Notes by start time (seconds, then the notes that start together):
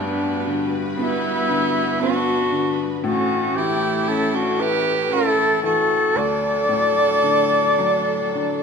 Already playing: G2 G3 B3 D4 F#4 B4
0.46 D3
0.97 B3 E4
1.49 D3
2.00 B3 D4 F#4
2.51 D3
3.01 A2 E3 C#4 F#4 A4
3.06 C#4
3.55 E3 E4 G4
4.06 C#4 A4
4.11 E4
4.35 D4 F#4
4.58 E4 G4 B4
5.11 C#4 E4 A4
5.64 E3 F#4 A4
6.14 D2 F#3 D4 A4 D5
6.69 A2
7.23 D3
7.78 F#3
8.35 D3